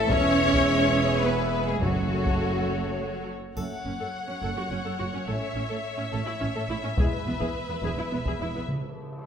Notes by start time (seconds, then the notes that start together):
Already playing: E3 A3 A4 E5
0.10 E1 G#3 C#4 G#4 B4 C#5, taiko
0.53 taiko
1.24 B3 B4
1.68 G#3 G#4
1.82 F#1 F#2 C#3 F#3 A3 F#4 A4 C#5, taiko
2.25 taiko
3.56 F#1 F#2 A3 C#4 A4 C#5 F#5, taiko, triangle
3.85 F#1 F#2 C#4
4.00 F#2 A4
4.28 F#2 C#4
4.42 F#1 F#2 A4
4.56 F#2 F#4
4.70 F#1 F#2 C#4
4.84 F#2 A4
4.99 F#1 F#2 F#4
5.13 F#2 C#4
5.27 A1 A2 A3 C#4 A4 E5
5.56 A1 A2 C#4
5.69 A2 A4
5.97 A2 C#4
6.11 A1 A2 A4
6.26 A2 E4
6.41 A1 A2 C#4
6.55 A2 A4
6.69 A1 A2 E4
6.83 A2 C#4
6.97 E1 E2 G#3 E4 G#4 B4, taiko
7.26 E1 E2 B3
7.40 E2 G#4, taiko
7.69 E2 B3
7.83 E1 E2 G#4, taiko
7.97 E2 E4
8.11 E1 E2 B3
8.26 E2 G#4, taiko
8.40 E1 E2 E4
8.55 E2 B3
8.68 C#3, cymbal swell